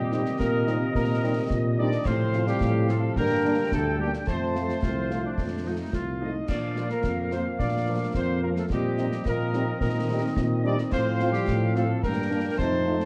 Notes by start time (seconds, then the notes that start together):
Already playing: A#2 C3 D#3 G3 C4 G4 D#5
0.12 G3 C4 D#4, snare
0.26 snare
0.38 A#2 A#3 A#4, concert bass drum, snare
0.67 G3 C4 D#4, snare
0.95 A#2 A#3 A#4, concert bass drum, snare
1.24 G3 C4 D#4
1.50 A#2, concert bass drum, snare
1.78 G3 C4 D4 D#4 D5
1.92 snare
2.05 A2 C3 F3 C4 C5 F5, concert bass drum, snare, crash
2.33 F3 C4 F4, snare
2.47 G3 G4, snare
2.61 A2, concert bass drum, snare
2.89 F3 A3 C4 F4 A4, snare
3.16 G2 D3 G3 A#3 D4 A#4 G5, concert bass drum, snare
3.45 A#3 D4
3.72 D2 A3 A4, concert bass drum, snare
3.99 G3 A#3 D4 G4
4.14 snare
4.27 F2 F3 A3 C4 C5 A5, concert bass drum, snare
4.55 F3 A3 F4, snare
4.69 snare
4.83 C2 F4, concert bass drum, snare
5.11 F3 A3 F4, snare
5.25 D4
5.38 F2, concert bass drum, snare
5.65 F3 A3 D#4 F4
5.93 C2 F4, concert bass drum, snare
6.21 F3 A3 D#4 F4 D#5
6.48 A#2 F3 A#3 D4 D5 F5, concert bass drum, snare, crash
6.76 F3 A#3 F4, snare
6.90 A#3 A#4, snare
7.04 F2, concert bass drum, snare
7.31 F3 A#3 C4 F4 C5, snare
7.59 A#2 D4 D5, concert bass drum, snare
7.88 F3 A#3 F4
8.14 F2 C4 C5, concert bass drum, snare
8.43 F3 A#3 F4 A#4
8.56 A3 A4, snare
8.70 A#2 G3 C4 G4 D#5, concert bass drum, snare
8.98 G3 C4 D#4, snare
9.12 snare
9.26 A#2 A#3 A#4, concert bass drum, snare
9.53 G3 C4 D#4, snare
9.80 A#2 D#3 A#3 A#4, concert bass drum, snare
10.10 G3 C4 D#4
10.36 A#2, concert bass drum, snare
10.64 G3 C4 D4 D#4 D5
10.78 snare
10.92 A2 F3 C4 C5 F5, concert bass drum, snare, crash
11.19 F3 C4 F4, snare
11.33 G3 G4, snare
11.48 A2, concert bass drum, snare
11.75 F3 A3 C4 F4 A4, snare
12.03 G2 A#3 D4 A#4 G5, concert bass drum, snare
12.31 A#3 D4
12.58 F2 A3 C4 D#4 C5 A5, concert bass drum, snare
12.86 A3 D#4 F4
13.00 snare